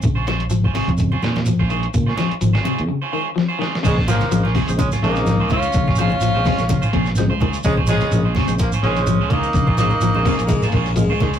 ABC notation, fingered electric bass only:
X:1
M:4/4
L:1/16
Q:"Swing 16ths" 1/4=126
K:Bbm
V:1 name="Fingered electric bass" clef=bass
B,,,4 A,,,3 F,,3 B,,3 B,,,3 | B,,2 z2 A,,,2 z F,, z8 | B,,,4 B,,,3 B,,,3 B,,,3 D,,3 | B,,,4 B,,,3 B,,,3 B,,,3 D,,3 |
B,,,4 B,,,3 B,,,3 B,,,3 D,,3 | B,,,4 B,,,3 B,,,3 B,,,3 D,,3 |]